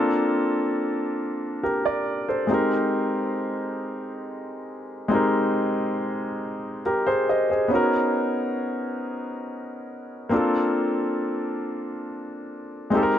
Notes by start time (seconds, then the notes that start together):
Already playing: A#3 C4 D4 F4 A4
1.63 G4 A#4
1.85 A#4 D5
2.28 A4 C5
2.47 G#3 C4 D#4
2.52 G4 A#4
5.08 G#3 C4 D#4
5.13 G4 A#4
6.86 G4 A#4
7.07 G#4 C5
7.29 C5 D#5
7.50 G#4 C5
7.68 B3 C#4 D#4
7.73 F#4 A#4
10.29 A#3 C4 D4
10.34 F4 A4
12.90 G#3 C4 D#4
12.95 G4 A4
13.03 A#4